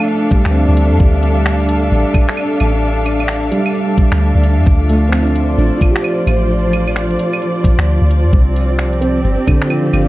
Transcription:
0.00 4.68 F3 medium
0.00 4.68 A3 medium
0.00 4.68 D4 medium
0.00 5.63 D4 medium
0.00 10.08 D4 medium
0.00 5.97 A4 medium
0.00 10.08 D5 medium
0.00 6.15 E5 medium
0.00 5.46 F5 medium
0.08 closed hi-hat soft
0.31 0.99 G3 medium
0.31 kick loud
0.31 closed hi-hat medium
0.45 0.66 D2 medium
0.45 finger snap loud
0.51 1.37 C4 medium
0.68 0.93 D2 medium
0.77 closed hi-hat medium
0.91 0.99 F2 medium
1.00 1.90 D2 loud
1.00 1.89 G3 medium
1.00 kick loud
1.23 closed hi-hat medium
1.46 finger snap loud
1.60 closed hi-hat soft
1.69 closed hi-hat medium
1.91 2.05 A1 medium
1.91 closed hi-hat soft
2.14 kick loud
2.14 closed hi-hat medium
2.14 claves soft
2.29 finger snap loud
2.37 claves medium
2.60 3.51 A1 medium
2.60 closed hi-hat medium
2.60 claves medium
3.06 closed hi-hat medium
3.06 claves soft
3.20 claves soft
3.28 finger snap loud
3.43 closed hi-hat soft
3.51 4.41 G3 medium
3.51 closed hi-hat soft
3.66 claves medium
3.75 closed hi-hat soft
3.98 kick loud
3.98 closed hi-hat medium
4.12 4.32 D2 medium
4.12 finger snap loud
4.35 4.59 D2 medium
4.43 closed hi-hat medium
4.57 4.66 F2 medium
4.66 5.57 D2 loud
4.66 9.81 F3 medium
4.66 kick loud
4.81 9.21 F4 medium
4.89 5.79 A3 medium
4.89 closed hi-hat medium
5.09 5.95 C4 medium
5.09 finger snap loud
5.22 5.57 D4 medium
5.27 closed hi-hat soft
5.35 closed hi-hat soft
5.46 9.09 C5 medium
5.50 10.08 D5 medium
5.58 5.71 A1 medium
5.58 6.47 D4 medium
5.58 closed hi-hat soft
5.77 6.63 F4 medium
5.77 kick loud
5.82 closed hi-hat medium
5.82 claves soft
5.91 6.75 G4 medium
5.96 finger snap loud
6.04 claves medium
6.27 7.17 A1 medium
6.27 closed hi-hat medium
6.27 claves soft
6.73 closed hi-hat medium
6.73 claves soft
6.87 claves soft
6.96 finger snap loud
7.10 closed hi-hat soft
7.19 closed hi-hat soft
7.33 claves medium
7.42 closed hi-hat soft
7.64 kick loud
7.64 closed hi-hat soft
7.78 7.99 D2 medium
7.78 finger snap medium
8.01 8.25 D2 medium
8.11 closed hi-hat medium
8.24 8.32 F2 medium
8.33 9.23 C2 loud
8.33 10.08 C4 medium
8.33 kick loud
8.56 closed hi-hat medium
8.76 10.08 G4 medium
8.76 finger snap loud
8.93 closed hi-hat soft
9.01 9.90 C4 medium
9.01 closed hi-hat medium
9.24 9.37 G1 medium
9.24 closed hi-hat soft
9.47 10.08 D3 medium
9.47 kick loud
9.47 closed hi-hat medium
9.47 claves medium
9.62 finger snap medium
9.66 10.08 F3 medium
9.70 claves medium
9.77 10.08 F5 medium
9.93 10.08 G1 medium
9.93 closed hi-hat medium
9.93 claves medium

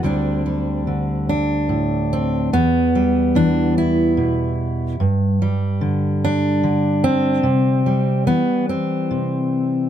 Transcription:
0.03 2.53 D2 medium
0.03 0.86 D3 soft
0.03 0.45 G3 soft
0.03 2.12 C4 soft
0.03 1.28 D4 soft
0.46 2.95 G3 soft
0.87 2.53 D3 soft
1.29 2.53 D4 medium
1.69 2.53 A2 soft
2.13 2.53 C4 medium
2.53 4.95 E2 medium
2.53 4.18 B3 medium
2.95 5.41 G3 soft
3.35 4.95 E3 soft
3.35 3.77 D4 medium
3.78 5.00 E4 medium
4.17 4.95 B2 soft
5.00 7.39 G2 medium
5.42 7.85 G3 soft
5.81 6.62 D3 medium
6.25 7.45 D4 medium
6.63 7.40 D3 soft
7.04 8.27 C4 medium
7.43 8.26 C3 medium
7.86 9.89 G3 soft
8.27 9.89 E3 soft
8.27 8.68 B3 medium
8.69 9.89 C4 medium
9.11 9.89 C3 soft

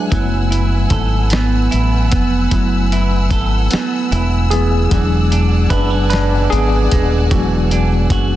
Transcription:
0.00 0.12 F#3 soft
0.00 0.13 G#3 soft
0.00 0.14 D4 medium
0.00 0.14 G#4 medium
0.00 0.13 B4 loud
0.00 0.13 C#5 medium
0.00 0.13 E5 loud
0.00 0.14 F#5 medium
0.00 4.87 G#5 medium
0.10 0.88 F#1 loud
0.10 2.51 F#3 medium
0.10 1.28 F#3 medium
0.10 1.28 A3 medium
0.10 1.28 B3 medium
0.10 1.28 E4 medium
0.10 4.87 B4 medium
0.10 4.88 F#5 medium
0.10 8.36 E6 medium
0.10 kick loud
0.10 closed hi-hat medium
0.51 1.71 E4 medium
0.51 closed hi-hat medium
0.90 1.67 G#1 loud
0.90 3.31 A4 medium
0.90 kick loud
0.90 closed hi-hat medium
1.30 2.11 B3 medium
1.30 snare loud
1.30 closed hi-hat medium
1.71 2.09 A1 medium
1.71 2.92 E4 medium
1.71 closed hi-hat soft
2.11 3.70 B3 medium
2.11 kick medium
2.11 closed hi-hat medium
2.51 3.31 F#1 medium
2.51 4.92 F#3 medium
2.51 4.88 F#3 medium
2.51 4.51 A3 medium
2.51 4.52 B3 medium
2.51 4.52 E4 medium
2.51 kick loud
2.51 closed hi-hat medium
2.92 4.11 E4 medium
2.92 closed hi-hat medium
3.31 3.67 G#1 loud
3.31 5.00 A4 medium
3.31 kick loud
3.31 closed hi-hat medium
3.71 4.51 B3 medium
3.71 muted fingered electric bass stroke medium
3.71 snare loud
3.71 closed hi-hat medium
4.12 4.88 E1 loud
4.12 5.31 E4 medium
4.12 closed hi-hat soft
4.50 4.88 E3 soft
4.50 4.88 A3 soft
4.50 6.10 B3 medium
4.50 5.68 B3 medium
4.50 4.88 E4 medium
4.50 5.75 G#4 medium
4.50 closed hi-hat medium
4.91 5.68 E1 loud
4.91 7.31 E3 medium
4.91 7.28 F#3 medium
4.91 7.28 G#3 medium
4.91 5.71 D4 medium
4.91 8.36 D5 medium
4.91 8.36 F#5 medium
4.91 8.36 G#5 medium
4.91 kick loud
4.91 closed hi-hat medium
5.32 6.51 D4 medium
5.32 closed hi-hat medium
5.70 6.47 F#1 loud
5.70 6.09 D4 medium
5.70 5.90 E4 medium
5.70 6.08 B4 loud
5.70 kick loud
5.70 closed hi-hat medium
5.91 8.10 F#4 medium
6.10 6.91 G#3 medium
6.10 6.49 D4 medium
6.10 6.48 B4 loud
6.10 snare loud
6.10 closed hi-hat medium
6.50 6.88 G#1 loud
6.50 7.28 B3 medium
6.50 7.71 D4 medium
6.50 7.27 G#4 loud
6.50 closed hi-hat soft
6.91 7.28 D#1 medium
6.91 8.36 G#3 medium
6.91 kick loud
6.91 closed hi-hat medium
7.31 8.08 E1 loud
7.31 8.36 E3 medium
7.31 8.36 F#3 medium
7.31 8.36 G#3 medium
7.31 8.36 B3 medium
7.31 8.36 D4 medium
7.31 8.36 F#4 medium
7.31 kick loud
7.31 closed hi-hat medium
7.71 8.36 D4 medium
7.71 closed hi-hat medium
8.10 8.36 F#1 medium
8.10 8.36 F#4 medium
8.10 kick loud
8.10 closed hi-hat medium

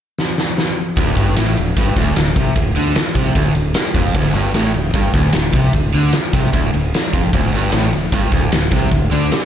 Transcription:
0.18 snare medium
0.38 snare medium
0.58 snare medium
0.97 1.16 D1 medium
0.97 1.16 D2 loud
0.97 kick loud
0.97 ride medium
1.16 1.35 G1 medium
1.16 1.36 G2 loud
1.16 kick medium
1.16 ride medium
1.36 1.56 A1 medium
1.36 1.56 A2 medium
1.36 snare loud
1.36 ride loud
1.57 1.76 D1 medium
1.57 1.74 D2 medium
1.57 ride medium
1.77 1.95 G1 medium
1.77 1.97 G2 loud
1.77 kick loud
1.77 ride medium
1.96 2.15 D1 medium
1.96 2.16 D2 loud
1.96 kick loud
1.96 ride medium
2.16 2.35 D1 medium
2.16 2.33 D2 medium
2.16 snare loud
2.16 ride medium
2.36 2.55 C2 medium
2.36 2.56 C3 loud
2.36 kick loud
2.36 ride medium
2.56 2.75 D1 medium
2.56 2.72 D2 medium
2.56 kick medium
2.56 ride medium
2.75 2.95 D2 medium
2.75 2.95 D3 medium
2.75 ride medium
2.95 muted fingered electric bass stroke soft
2.95 muted overdriven electric guitar stroke medium
2.95 snare loud
2.95 ride medium
3.15 3.34 C2 medium
3.15 3.35 C3 loud
3.15 kick medium
3.15 ride medium
3.35 3.54 D1 medium
3.35 3.55 D2 medium
3.35 kick loud
3.35 ride medium
3.55 3.74 D1 medium
3.55 3.72 D2 medium
3.55 ride medium
3.74 snare loud
3.74 ride medium
3.94 4.13 F1 loud
3.94 4.15 F2 medium
3.94 kick loud
3.94 ride medium
4.14 4.32 D1 medium
4.14 4.35 D2 loud
4.14 kick medium
4.14 ride medium
4.33 4.52 G1 medium
4.33 4.55 G2 loud
4.33 ride medium
4.53 4.72 A1 medium
4.53 4.74 A2 medium
4.53 snare loud
4.53 ride medium
4.74 4.93 D1 medium
4.74 4.91 D2 medium
4.74 ride medium
4.94 5.13 G1 medium
4.94 5.14 G2 loud
4.94 kick loud
4.94 ride medium
5.13 5.33 D1 medium
5.13 5.34 D2 loud
5.13 kick loud
5.13 ride medium
5.33 5.53 D1 medium
5.33 5.51 D2 medium
5.33 snare loud
5.33 ride loud
5.53 5.72 C2 medium
5.53 5.74 C3 medium
5.53 kick loud
5.53 ride medium
5.73 5.92 D1 medium
5.73 5.90 D2 medium
5.73 kick medium
5.73 ride loud
5.92 6.12 D2 medium
5.92 6.14 D3 loud
5.92 ride medium
6.13 muted fingered electric bass stroke soft
6.13 muted overdriven electric guitar stroke medium
6.13 snare loud
6.13 ride medium
6.33 6.52 C2 medium
6.33 6.52 C3 loud
6.33 kick loud
6.33 snare soft
6.33 ride medium
6.52 6.72 D1 medium
6.52 6.72 D2 medium
6.52 kick loud
6.52 ride medium
6.73 6.92 D1 medium
6.73 6.89 D2 medium
6.73 ride medium
6.94 snare loud
6.94 ride medium
7.13 7.32 F1 medium
7.13 7.32 F2 medium
7.13 kick loud
7.13 ride medium
7.33 7.52 D1 loud
7.33 7.52 D2 loud
7.33 kick loud
7.33 ride medium
7.53 7.71 G1 medium
7.53 7.72 G2 loud
7.53 ride medium
7.72 7.91 A1 medium
7.72 7.92 A2 loud
7.72 snare loud
7.72 ride medium
7.93 8.12 D1 medium
7.93 8.09 D2 medium
7.93 snare soft
7.93 ride medium
8.12 8.31 G1 medium
8.12 8.32 G2 medium
8.12 kick loud
8.12 ride medium
8.32 8.51 D1 medium
8.32 8.52 D2 loud
8.32 kick loud
8.32 ride medium
8.52 8.71 D1 medium
8.52 8.69 D2 medium
8.52 snare loud
8.52 ride medium
8.72 8.91 C2 medium
8.72 8.91 C3 loud
8.72 kick loud
8.72 ride medium
8.91 9.10 D1 medium
8.91 9.08 D2 medium
8.91 kick medium
8.91 ride medium
9.12 9.30 D2 loud
9.12 9.31 D3 medium
9.12 ride medium
9.31 muted overdriven electric guitar stroke medium
9.31 muted fingered electric bass stroke soft
9.31 snare loud
9.31 ride loud

